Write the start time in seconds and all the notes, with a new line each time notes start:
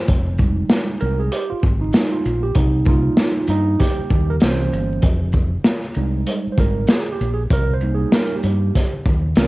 Already playing: C5
0.08 F1, kick, closed hi-hat
0.38 G3 G#3 D#4, kick, shaker
0.69 snare, closed hi-hat
1.00 C2 A#4, shaker
1.20 G#4
1.32 G4, closed hi-hat
1.50 F4, muted fingered electric bass stroke
1.63 G#1, kick, shaker
1.81 D#4
1.93 G3 G#3 D#4, snare, closed hi-hat
2.12 F4
2.25 A#1, shaker
2.43 G4
2.55 C2 D#4, kick, closed hi-hat
2.85 G3 A#3 D#4 F4, kick, shaker
3.17 snare, closed hi-hat
3.47 G2 D#4, closed hi-hat, shaker
3.80 G4, kick, snare, closed hi-hat
3.99 muted fingered electric bass stroke
4.10 D#2, kick, shaker
4.30 A#4
4.40 C2 E3 A#3 C#4 C5, snare, closed hi-hat
4.72 G1, shaker
5.02 F1, kick, closed hi-hat
5.32 kick, shaker
5.64 snare, closed hi-hat
5.95 C2 G3 G#3 D#4, shaker
6.27 closed hi-hat
6.47 muted fingered electric bass stroke
6.52 C5
6.58 G#1 A#4, kick, closed hi-hat, shaker
6.87 G#4, snare, closed hi-hat
7.12 G4
7.21 A#1, shaker
7.34 G#4
7.51 C2 A#4, kick, closed hi-hat
7.74 C5
7.81 G3 A#3 D#4, shaker
7.95 G#4
8.12 A#4, snare, closed hi-hat
8.36 G4
8.43 G2, closed hi-hat, shaker
8.75 kick, snare, closed hi-hat
8.93 muted fingered electric bass stroke
9.06 D#2, kick, shaker
9.35 C2 E3 A#3 C#4 A#4, snare, closed hi-hat